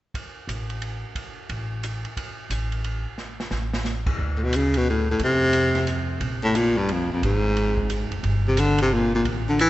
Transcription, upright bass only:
0.47 A1
1.49 A1
2.50 A1
3.51 A1
4.18 D2
5.19 F2
6.21 A#1
7.09 muted upright bass stroke
7.22 G#1
8.11 F#1
8.23 G1
9.25 A1

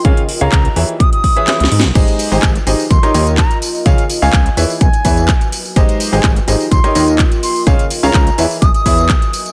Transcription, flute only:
0.41 A#5
1.00 D#6
1.13 D#6
2.32 G#5
2.90 C6
3.38 A#5
4.22 G#5
4.81 G#5
6.12 G#5
6.71 C6
7.43 C6
8.03 A#5
8.62 D#6
8.75 D#6

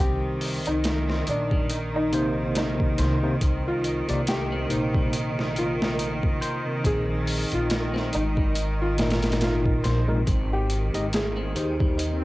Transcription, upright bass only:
0.00 C2
0.66 C2
1.28 A#1
2.99 C2
3.42 C2
4.09 C2
4.71 A#1
6.85 A#1
7.52 A#1
8.14 G#1
9.85 A#1
10.27 G#1
10.95 G#1
11.56 D#2

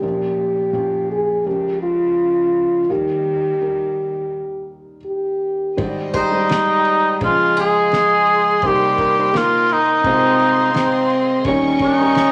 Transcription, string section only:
5.78 G3 C5 D#5 G5
7.20 G#4 F5 C6
8.62 A#4 D#5 G5
10.03 C4 G#4 F5 C6
11.44 A#4 G5 C#6

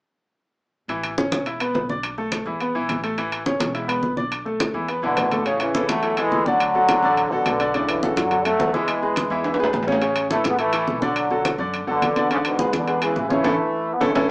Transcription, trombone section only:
5.03 B2 D3
5.46 A2 C#3
5.61 C#3 E3
5.89 F#3 A3
6.19 E3 G#3
6.47 D3 F#3
7.32 B2 D3
7.74 A2 C#3
7.89 C#3 E3
8.17 D3 F#3
8.45 F#3 A3
8.74 E3 G#3
10.32 E3 A3
10.46 G#3 B3
10.60 E3 A3
11.03 D3 F#3
11.88 B2 D3
12.31 G#2 C#3
12.46 G#2 B2
12.74 B2 D3
13.02 C#3 E3
13.31 E3 A3
13.94 B3
14.03 A3
14.12 G#3
14.21 A3

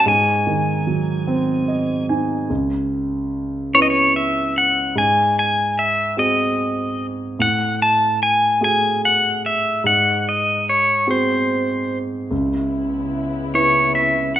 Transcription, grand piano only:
0.06 G#2
0.47 D#3
0.87 F#3
1.27 C4
1.68 D#5
2.09 D#4 G#5
2.50 C#2
3.74 C#4 E4 B4
4.96 G#2
6.17 C4 F#4 G#4
7.39 A2
8.61 A3 F#4 G#4
9.84 G#2
11.07 C4 F#4 G#4
12.31 C#2
13.54 C#4 E4 B4

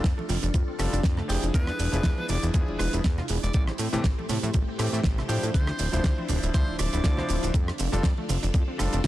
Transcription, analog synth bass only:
0.04 F2
0.29 F1
0.43 F1
0.54 F2
0.79 F1
0.93 F1
1.04 F2
1.29 F1
1.43 F1
1.54 E2
1.79 E1
1.93 E1
2.04 E2
2.29 E1
2.43 E1
2.54 E2
2.68 E1
2.79 E1
2.93 E1
3.29 E1
3.43 E1
3.54 A1
3.79 A2
3.93 A2
4.04 A1
4.29 A2
4.43 A2
4.54 A1
4.79 A2
4.93 A2
5.04 A1
5.29 A2
5.43 A2
5.55 D2
5.79 D1
5.93 D1
6.04 D2
6.29 D1
6.43 D1
6.54 D2
6.68 D1
6.79 D1
6.93 D1
7.04 D2
7.29 D1
7.43 D1
7.54 F2
7.80 F1
7.93 F1
8.04 F2
8.29 F1
8.43 F1
8.54 F2
8.80 F1
8.93 F1

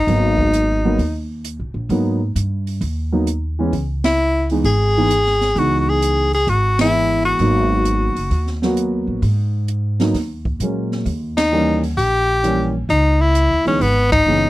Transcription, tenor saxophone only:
Already playing: D#4
4.05 E4
4.66 G#4
5.59 F#4
5.79 F#4
5.89 G#4
6.35 G#4
6.49 F#4
6.81 E4
7.25 F#4
11.37 D#4
11.97 G4
12.90 D#4
13.21 E4
13.67 C#4
13.82 B3
14.12 D#4

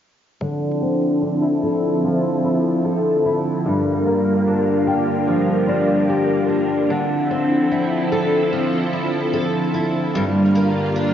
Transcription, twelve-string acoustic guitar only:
0.41 D3
0.82 C4
1.22 D4
1.42 E4
1.63 A4
2.04 F3
2.44 E4
2.85 A4
3.25 E4
3.66 G2
4.06 A#3
4.48 D4
4.87 G4
5.28 F3
5.68 D4
6.09 G4
6.49 D4
6.90 D3
7.31 C4
7.71 E4
8.12 A4
8.53 F3
8.93 E4
9.33 A4
9.74 E4
10.15 G2
10.55 A#3
10.96 D4

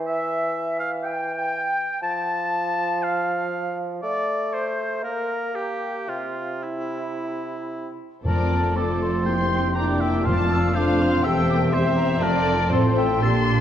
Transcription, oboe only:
0.06 E5
0.79 F5
1.03 G5
2.03 A5
3.03 F5
4.02 D5
4.53 C5
5.04 A#4
5.55 G4
6.09 F4
6.63 E4
8.25 A#4
8.76 A4
9.25 G5
9.75 G5
10.00 E5
10.26 F5
10.74 C5
11.24 E5
11.73 C5
12.22 A#4
12.73 A4
12.97 E5
13.23 A5

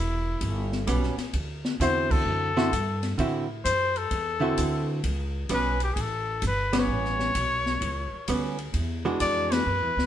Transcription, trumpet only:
Already playing: E4
1.82 C5
2.11 A4
3.65 C5
3.97 A4
5.54 B4
5.84 G4
5.94 G#4
6.01 A4
6.47 B4
6.79 C#5
9.21 D5
9.53 B4

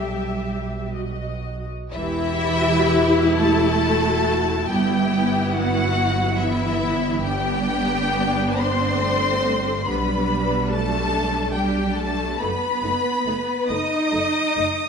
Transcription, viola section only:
Already playing: G4 E5
0.96 F#4 D#5
1.94 E4 G4
3.84 F#4
4.71 B3 E4
6.40 B3 E4
7.25 B3 D4
9.03 A3
9.87 G3 D4
11.54 G3 D4
12.41 A3 D#4
12.83 A3 D#4
13.26 A3 D#4
13.69 A3 D#4
14.11 A3 D#4
14.56 A3 D#4

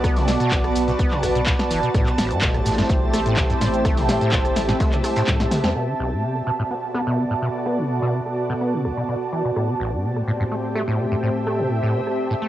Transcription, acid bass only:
0.04 B3
0.16 C3
0.28 B2
0.40 B2
0.52 C3
0.88 B2
0.99 B3
1.12 C3
1.23 B1
1.35 B2
1.47 B2
1.71 E3
1.83 B2
1.94 A2
2.07 C3
2.18 A1
2.31 G2
2.42 B2
2.55 A2
2.66 A2
2.78 G2
2.90 A3
3.14 A3
3.26 A2
3.37 B2
3.50 G2
3.61 A2
3.85 A3
3.98 B2
4.09 A2
4.21 A2
4.33 B2
4.69 A2
4.80 A3
4.93 B2
5.04 A3
5.17 A2
5.28 A2
5.40 A2
5.52 A3
5.64 C4
5.75 B2
5.88 D3
5.99 B1
6.12 A2
6.23 C3
6.35 B2
6.47 B2
6.59 A2
6.70 B3
6.94 B3
7.07 B2
7.18 C3
7.30 A2
7.42 B2
7.66 B3
7.78 C3
7.90 B2
8.02 B2
8.13 C3
8.50 B2
8.61 B3
8.73 C3
8.85 B1
8.97 B2
9.09 B2
9.33 E3
9.45 B2
9.56 A2
9.69 C3
9.80 A1
9.92 G2
10.04 B2
10.16 A2
10.28 A2
10.40 G2
10.52 A3
10.75 A3
10.88 A2
10.99 B2
11.12 G2
11.23 A2
11.47 A3
11.59 B2
11.71 A2
11.83 A2
11.94 B2
12.31 A2
12.42 A3

